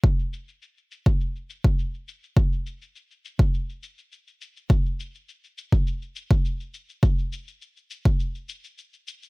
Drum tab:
SH |xxxxxxxxxxxxxxxx|xxxxxxxxxxxxxxxx|xxxxxxxxxxxxxxxx|xxxxxxxxxxxxxxxx|
BD |o------o---o----|o------o--------|o------o---o----|o------o--------|